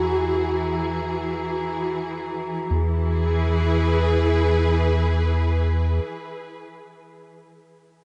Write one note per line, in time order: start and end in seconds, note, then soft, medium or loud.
0.00 2.65 E2 medium
0.00 2.70 E3 medium
0.00 2.70 E4 medium
0.00 1.56 F#4 loud
0.00 2.70 F#4 medium
0.00 2.72 F#4 medium
0.00 2.71 G#4 medium
0.00 2.73 A#5 medium
2.70 6.00 E2 medium
2.70 6.15 E3 medium
2.70 6.13 G#4 medium
2.88 6.29 E4 medium
3.05 6.47 G#4 medium
3.23 6.64 B4 medium